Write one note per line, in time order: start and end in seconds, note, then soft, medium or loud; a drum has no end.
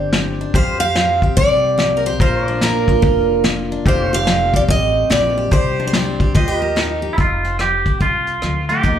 0.00 0.43 G1 medium
0.00 0.10 G2 medium
0.00 0.53 C4 medium
0.00 0.40 D4 medium
0.00 0.52 G4 medium
0.00 0.53 G4 medium
0.00 0.53 C5 medium
0.00 0.53 D5 medium
0.13 0.52 G3 medium
0.13 snare loud
0.13 open hi-hat soft
0.41 0.53 D4 medium
0.54 1.26 F2 medium
0.54 0.93 F2 medium
0.54 2.19 G4 medium
0.54 0.80 G4 medium
0.54 0.79 C5 medium
0.54 2.20 C5 medium
0.54 2.20 F5 medium
0.54 kick loud
0.54 open hi-hat soft
0.80 1.22 G4 medium
0.80 1.19 F5 loud
0.96 1.34 F3 medium
0.96 2.19 C4 medium
0.96 snare loud
0.96 open hi-hat soft
1.22 2.05 G4 medium
1.22 kick medium
1.37 2.09 C2 medium
1.37 1.76 C3 medium
1.37 2.00 D5 loud
1.37 kick loud
1.37 open hi-hat soft
1.78 2.17 F3 medium
1.78 snare loud
1.78 open hi-hat soft
1.97 2.04 A#4 medium
2.06 2.19 G4 medium
2.06 2.20 C5 medium
2.20 2.92 A#1 medium
2.20 2.59 A#2 medium
2.20 2.88 F4 medium
2.20 3.85 A#4 medium
2.20 2.63 C5 medium
2.20 2.47 C5 medium
2.20 3.86 F5 medium
2.20 kick loud
2.20 open hi-hat soft
2.47 3.71 D4 medium
2.47 3.85 D5 medium
2.61 3.00 F3 medium
2.61 3.85 A#3 medium
2.61 3.41 A#4 medium
2.61 snare loud
2.61 open hi-hat medium
2.88 3.86 F4 medium
2.88 kick medium
3.02 3.75 F1 medium
3.02 3.41 F2 medium
3.02 kick loud
3.02 open hi-hat medium
3.44 3.83 F3 medium
3.44 snare loud
3.44 open hi-hat soft
3.72 3.85 D4 medium
3.86 4.58 F1 loud
3.86 4.25 F2 medium
3.86 4.13 G4 medium
3.86 5.51 G4 medium
3.86 4.15 C5 medium
3.86 4.13 D5 medium
3.86 5.51 F5 medium
3.86 kick medium
3.86 open hi-hat medium
4.13 4.53 G4 medium
4.13 5.51 C5 medium
4.13 4.56 F5 loud
4.27 4.66 F3 medium
4.27 5.51 C4 medium
4.27 snare loud
4.27 open hi-hat medium
4.54 5.36 G4 medium
4.54 4.61 D5 medium
4.54 kick medium
4.68 5.04 A1 medium
4.68 5.07 C3 medium
4.68 5.08 D#5 loud
4.68 kick loud
4.68 open hi-hat medium
5.10 5.46 A#1 medium
5.10 5.49 F3 medium
5.10 5.52 D5 loud
5.10 snare loud
5.38 5.51 G4 medium
5.51 6.24 C2 medium
5.51 5.90 C3 medium
5.51 6.34 G4 medium
5.51 6.19 G4 medium
5.51 6.34 C5 medium
5.51 5.86 C5 medium
5.51 6.35 D5 medium
5.51 kick loud
5.51 open hi-hat soft
5.80 6.34 D4 medium
5.87 5.91 C5 medium
5.93 6.32 G3 medium
5.93 6.34 C4 medium
5.93 6.35 D5 medium
5.93 snare loud
5.93 open hi-hat soft
6.20 6.33 G4 medium
6.20 kick medium
6.34 7.07 D#2 medium
6.34 6.73 D#3 medium
6.34 6.48 F4 medium
6.34 7.18 G4 medium
6.34 6.62 C5 medium
6.34 6.99 D#5 medium
6.34 7.19 D#5 medium
6.34 kick loud
6.34 open hi-hat soft
6.48 6.61 G4 medium
6.62 7.01 G4 medium
6.62 7.18 A#4 medium
6.76 7.15 A#3 medium
6.76 7.16 D#4 medium
6.76 snare medium
6.76 open hi-hat medium
7.02 7.16 G4 medium
7.13 7.18 E4 medium
7.18 7.90 F1 medium
7.18 7.56 F2 medium
7.18 7.60 F4 medium
7.18 kick medium
7.18 closed hi-hat medium
7.44 7.85 C4 medium
7.44 closed hi-hat medium
7.59 7.98 F3 medium
7.59 8.01 G4 medium
7.59 cross-stick medium
7.59 closed hi-hat medium
7.86 8.84 C4 soft
7.86 kick medium
7.86 closed hi-hat soft
8.00 8.36 C2 medium
8.00 8.39 C3 medium
8.00 8.66 F4 medium
8.00 kick medium
8.00 closed hi-hat medium
8.27 closed hi-hat medium
8.42 8.78 D2 medium
8.42 8.81 F3 medium
8.42 cross-stick medium
8.42 closed hi-hat medium
8.69 8.83 A3 medium
8.69 8.99 G4 medium
8.69 closed hi-hat medium
8.83 8.99 D#2 medium
8.83 8.99 D#3 medium
8.83 8.99 A#3 medium
8.83 8.99 D#4 medium
8.83 kick medium
8.83 closed hi-hat medium